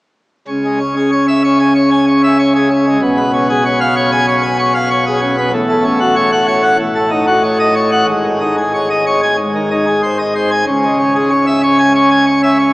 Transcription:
0.48 2.98 C#2 medium
0.48 2.98 C#3 medium
0.65 0.78 G#3 medium
0.80 0.94 C#4 medium
0.96 1.10 G#4 medium
1.12 1.26 C#5 medium
1.28 1.42 E5 medium
1.44 1.58 C#5 medium
1.59 1.73 G#5 medium
1.75 1.89 C#5 medium
1.91 2.05 G#5 medium
2.08 2.21 C#5 medium
2.23 2.37 E5 medium
2.39 2.53 C#5 medium
2.55 2.69 G#4 medium
2.71 2.85 C#4 medium
2.87 3.00 G#3 medium
3.02 5.49 B1 medium
3.02 5.49 B2 medium
3.17 3.31 B3 medium
3.33 3.47 C#4 medium
3.49 3.63 G#4 medium
3.65 3.79 C#5 medium
3.81 3.95 F5 medium
3.96 4.10 C#5 medium
4.12 4.26 G#5 loud
4.28 4.42 C#5 medium
4.43 4.57 G#5 medium
4.59 4.73 C#5 medium
4.75 4.88 F5 medium
4.90 5.04 C#5 medium
5.06 5.20 G#4 medium
5.21 5.35 C#4 medium
5.38 5.51 B3 medium
5.53 6.76 A1 loud
5.53 6.76 A2 medium
5.69 5.83 A3 medium
5.84 5.99 C#4 medium
6.00 6.14 F#4 medium
6.16 6.30 C#5 medium
6.32 6.46 F#5 medium
6.48 6.62 C#5 medium
6.63 6.77 F#5 medium
6.79 8.04 A1 medium
6.79 8.04 A2 medium
6.95 7.09 A3 medium
7.11 7.25 D#4 medium
7.27 7.42 F#4 medium
7.43 7.58 C#5 medium
7.59 7.74 D#5 medium
7.75 7.90 C#5 medium
7.92 8.06 F#5 medium
8.08 9.34 G#1 medium
8.08 9.34 G#2 medium
8.25 8.39 D#3 medium
8.41 8.55 D#4 medium
8.58 8.72 G#4 medium
8.74 8.88 C#5 medium
8.90 9.04 D#5 medium
9.06 9.21 C#5 medium
9.23 9.36 G#5 medium
9.38 10.63 G#1 medium
9.38 10.63 G#2 medium
9.55 9.69 D#3 medium
9.71 9.85 D#4 medium
9.87 10.01 G#4 medium
10.03 10.17 C5 medium
10.19 10.33 D#5 medium
10.36 10.50 C5 medium
10.51 10.65 G#5 medium
10.67 12.73 C#2 medium
10.67 12.73 C#3 medium
10.84 10.98 G#3 medium
10.99 11.13 C#4 medium
11.15 11.29 G#4 medium
11.31 11.45 C#5 medium
11.47 11.61 E5 medium
11.63 11.77 C#5 medium
11.78 11.93 G#5 medium
11.95 12.09 C#5 medium
12.11 12.25 G#5 medium
12.26 12.41 C#5 medium
12.43 12.57 E5 medium
12.59 12.73 C#5 medium

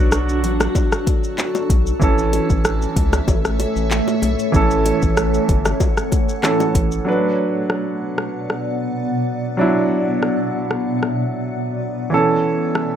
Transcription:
0.00 0.45 B1 medium
0.00 1.96 F#3 medium
0.00 1.97 D4 medium
0.00 1.97 F#4 medium
0.00 1.98 F#4 medium
0.00 7.03 A4 medium
0.12 cross-stick loud
0.12 shaker medium
0.29 shaker medium
0.43 0.68 A1 medium
0.43 closed hi-hat medium
0.43 low bongo medium
0.43 shaker soft
0.60 cross-stick loud
0.60 high bongo medium
0.60 shaker medium
0.75 kick loud
0.75 high bongo medium
0.75 shaker medium
0.92 cross-stick loud
0.92 shaker medium
1.07 kick loud
1.07 closed hi-hat medium
1.07 high bongo medium
1.07 shaker medium
1.24 shaker medium
1.38 clap medium
1.38 high bongo medium
1.38 shaker medium
1.55 high bongo medium
1.55 shaker medium
1.70 1.95 B1 medium
1.70 kick loud
1.70 closed hi-hat medium
1.70 low bongo medium
1.70 shaker medium
1.87 shaker medium
1.99 2.40 A1 loud
1.99 4.49 E3 medium
1.99 7.03 A3 medium
1.99 4.50 C#4 medium
1.99 4.51 A4 medium
1.99 7.03 C#5 medium
1.99 4.52 E5 medium
1.99 kick loud
1.99 shaker medium
2.18 shaker medium
2.33 closed hi-hat medium
2.33 high bongo medium
2.33 shaker medium
2.50 2.86 A1 loud
2.50 kick medium
2.50 shaker medium
2.65 cross-stick loud
2.65 shaker medium
2.82 shaker medium
2.96 3.21 C#2 medium
2.96 kick loud
2.96 closed hi-hat medium
2.96 low bongo medium
2.96 shaker soft
3.13 cross-stick medium
3.13 high bongo medium
3.13 shaker medium
3.28 3.66 A1 loud
3.28 kick loud
3.28 high bongo medium
3.28 shaker medium
3.45 cross-stick medium
3.45 shaker medium
3.60 closed hi-hat medium
3.60 high bongo medium
3.60 shaker medium
3.76 4.01 A1 medium
3.76 shaker medium
3.91 clap medium
3.91 high bongo medium
3.91 shaker medium
4.08 high bongo medium
4.08 shaker medium
4.22 4.36 B1 loud
4.22 closed hi-hat medium
4.22 low bongo medium
4.22 shaker medium
4.39 shaker medium
4.52 4.92 A1 loud
4.52 6.39 E3 medium
4.52 6.40 C#4 medium
4.52 6.41 A4 medium
4.52 7.04 F#5 medium
4.52 kick loud
4.52 shaker medium
4.71 shaker medium
4.85 closed hi-hat medium
4.85 high bongo medium
4.85 shaker medium
5.02 5.39 A1 loud
5.02 kick medium
5.02 shaker medium
5.17 cross-stick loud
5.17 shaker medium
5.34 shaker medium
5.49 5.74 G1 medium
5.49 kick loud
5.49 closed hi-hat medium
5.49 low bongo medium
5.49 shaker soft
5.65 cross-stick loud
5.65 high bongo medium
5.65 shaker medium
5.80 kick loud
5.80 high bongo medium
5.80 shaker medium
5.97 cross-stick medium
5.97 shaker medium
6.12 kick loud
6.12 closed hi-hat medium
6.12 high bongo medium
6.12 shaker medium
6.29 shaker medium
6.43 7.06 E3 medium
6.43 7.07 C#4 medium
6.43 7.07 A4 medium
6.43 cross-stick medium
6.43 clap medium
6.43 high bongo medium
6.43 shaker medium
6.60 high bongo medium
6.60 shaker medium
6.75 7.00 A1 loud
6.75 kick loud
6.75 closed hi-hat medium
6.75 low bongo medium
6.75 shaker medium
6.92 shaker medium
7.05 12.08 B2 medium
7.05 9.54 F#3 medium
7.05 12.08 B3 medium
7.05 9.55 D4 medium
7.05 9.56 B4 medium
7.05 12.08 D5 medium
7.05 12.08 F#5 medium
7.70 cross-stick medium
8.18 cross-stick medium
8.50 cross-stick medium
9.57 12.07 F#3 medium
9.57 12.08 D4 medium
9.57 12.09 E4 medium
10.23 cross-stick medium
10.71 cross-stick medium
11.03 cross-stick medium
12.10 12.96 A2 medium
12.10 12.96 E3 medium
12.10 12.96 A3 medium
12.10 12.96 C#4 medium
12.10 12.96 A4 medium
12.10 12.96 C#5 medium
12.10 12.96 E5 medium
12.75 cross-stick loud

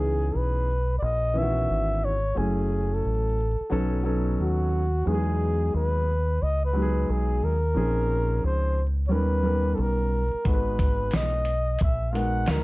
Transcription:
0.00 0.31 C#2 medium
0.00 0.68 E3 medium
0.00 0.65 B3 medium
0.00 0.66 C#4 medium
0.00 0.66 D#4 medium
0.00 0.39 G#4 medium
0.00 0.66 G#4 medium
0.35 0.99 B1 medium
0.35 0.98 B4 medium
0.99 1.66 A#1 loud
0.99 1.05 D5 medium
1.03 1.39 D#5 loud
1.34 2.11 D#3 medium
1.34 2.10 E3 medium
1.34 2.10 B3 medium
1.34 2.11 C#4 medium
1.34 1.44 E4 medium
1.38 2.06 E5 loud
1.43 2.15 F#4 medium
1.69 2.33 G#1 medium
2.05 2.40 C#5 medium
2.35 3.01 F#1 loud
2.35 3.35 F#3 medium
2.35 3.35 A3 medium
2.35 3.35 C#4 medium
2.35 3.36 E4 medium
2.35 2.95 G#4 medium
2.35 3.36 G#5 medium
2.94 3.94 A4 medium
3.05 3.57 A1 medium
3.61 muted fingered electric bass stroke soft
3.70 4.36 B1 loud
3.70 4.00 F#3 medium
3.70 4.00 B3 medium
3.70 4.00 C#4 medium
3.70 4.01 D#4 medium
3.70 4.01 A4 loud
4.03 4.80 F#3 medium
4.03 4.80 B3 medium
4.03 4.80 C#4 medium
4.03 4.81 D#4 medium
4.03 4.81 A4 medium
4.39 5.03 D#2 medium
4.39 5.09 F#4 medium
5.05 5.71 E2 loud
5.05 6.05 F#3 medium
5.05 6.05 G#3 medium
5.05 6.05 B3 medium
5.05 6.06 D#4 medium
5.05 5.15 F#4 medium
5.05 5.74 G#4 medium
5.14 6.09 G#4 medium
5.74 6.38 D#2 medium
5.74 6.44 B4 medium
6.42 7.06 C#2 medium
6.42 6.64 D#5 medium
6.65 7.13 B4 medium
6.73 7.50 F#3 medium
6.73 7.50 G#3 medium
6.73 7.50 B3 medium
6.73 7.51 D#4 medium
6.73 6.84 G4 medium
6.82 7.54 G#4 medium
7.09 7.41 B1 medium
7.09 7.46 G#4 medium
7.43 7.74 D#2 medium
7.43 8.44 A#4 loud
7.74 8.40 A#1 loud
7.74 8.74 F3 medium
7.74 8.75 C4 medium
7.74 8.75 C#4 medium
7.74 8.75 D#4 medium
7.74 8.76 G#4 medium
8.44 9.11 C#2 medium
8.44 8.84 C5 medium
9.08 9.75 D#2 medium
9.08 9.39 G3 medium
9.08 9.39 B3 medium
9.08 9.39 C#4 medium
9.08 9.40 D#4 medium
9.08 9.40 A#4 medium
9.08 9.14 C#5 medium
9.12 9.77 B4 loud
9.43 10.19 G3 medium
9.43 10.20 B3 medium
9.43 10.20 C#4 medium
9.43 10.20 D#4 medium
9.43 10.21 A#4 medium
9.75 10.31 B1 medium
9.75 9.83 A4 medium
9.81 10.50 A#4 medium
10.34 muted fingered electric bass stroke soft
10.45 11.10 G#1 loud
10.45 11.44 G#3 medium
10.45 11.44 B3 medium
10.45 11.45 D#4 medium
10.45 11.45 F#4 medium
10.45 10.55 A4 medium
10.45 11.17 B4 loud
10.45 kick loud
10.45 closed hi-hat medium
10.54 11.49 B4 medium
10.79 kick medium
10.79 closed hi-hat medium
11.11 11.77 B1 medium
11.11 snare loud
11.11 closed hi-hat medium
11.16 11.82 D#5 loud
11.45 closed hi-hat medium
11.79 12.45 A#1 medium
11.79 kick medium
11.79 closed hi-hat medium
11.83 12.13 E5 medium
12.12 12.64 G#3 medium
12.12 12.64 B3 medium
12.12 12.64 D#4 medium
12.12 12.64 F#4 medium
12.12 12.64 A#4 medium
12.12 12.18 F5 medium
12.12 closed hi-hat medium
12.16 12.52 F#5 loud
12.46 12.64 D2 medium
12.46 snare loud
12.46 closed hi-hat medium
12.51 12.64 A#4 medium

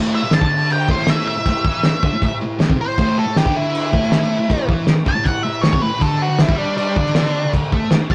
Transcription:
0.00 0.23 A2 loud
0.15 0.33 E5 medium
0.24 0.39 A2 medium
0.31 0.70 A5 medium
0.31 snare loud
0.31 crash medium
0.41 0.88 D3 medium
0.41 kick loud
0.70 0.90 G5 medium
0.70 crash medium
0.89 1.36 A2 medium
0.89 1.09 C5 medium
0.89 kick loud
0.98 snare soft
1.07 1.26 E5 medium
1.07 snare loud
1.07 crash medium
1.28 2.38 E5 medium
1.37 1.46 A2 medium
1.46 1.62 A2 medium
1.46 kick medium
1.46 crash medium
1.65 1.84 E3 loud
1.65 kick loud
1.83 muted distorted electric guitar stroke medium
1.83 snare loud
1.83 crash medium
2.03 2.12 D3 medium
2.03 kick loud
2.13 2.22 A2 medium
2.22 2.38 A2 medium
2.22 kick medium
2.22 crash medium
2.42 2.57 A2 medium
2.59 2.68 A2 loud
2.59 snare loud
2.59 crash medium
2.69 2.78 C3 loud
2.69 kick loud
2.78 2.94 A2 medium
2.78 3.17 C5 medium
2.98 3.26 A2 loud
2.98 kick loud
2.98 crash medium
3.19 3.37 A4 medium
3.27 3.42 A2 medium
3.36 3.55 G4 medium
3.36 snare loud
3.36 crash medium
3.45 3.92 D3 loud
3.45 kick loud
3.56 4.66 E4 medium
3.75 crash medium
3.92 4.38 A2 medium
3.92 kick loud
4.03 snare soft
4.12 snare loud
4.12 crash medium
4.22 snare soft
4.40 4.48 A2 medium
4.49 4.65 A2 medium
4.49 kick medium
4.49 crash medium
4.69 4.87 E3 loud
4.69 kick loud
4.87 muted distorted electric guitar stroke medium
4.87 snare loud
4.87 crash medium
5.05 5.15 D3 medium
5.05 5.26 A5 loud
5.05 kick loud
5.15 5.24 A2 medium
5.24 5.41 A2 medium
5.24 5.43 F#5 medium
5.24 kick medium
5.24 crash medium
5.43 5.60 A2 medium
5.43 5.62 E5 medium
5.62 5.72 A2 loud
5.62 5.82 C#5 medium
5.62 snare loud
5.62 crash medium
5.72 5.81 C3 loud
5.72 kick loud
5.81 5.97 A2 medium
5.81 6.01 B4 medium
6.00 6.28 D3 loud
6.00 6.22 A4 loud
6.00 kick loud
6.00 crash medium
6.22 6.40 F#4 medium
6.30 6.45 D3 medium
6.39 6.58 E4 medium
6.39 snare loud
6.39 crash medium
6.49 6.96 G3 medium
6.49 kick loud
6.58 6.76 D4 medium
6.77 7.51 D4 loud
6.77 crash medium
6.96 7.43 D3 medium
6.96 kick loud
7.06 snare soft
7.15 snare loud
7.15 crash medium
7.25 snare soft
7.45 7.53 D3 medium
7.53 7.69 D3 medium
7.53 kick medium
7.53 crash medium
7.72 7.91 A3 loud
7.72 kick loud
7.91 muted distorted electric guitar stroke medium
7.91 snare loud
7.91 crash medium
8.10 8.15 G3 medium
8.10 8.15 A5 loud
8.10 kick loud

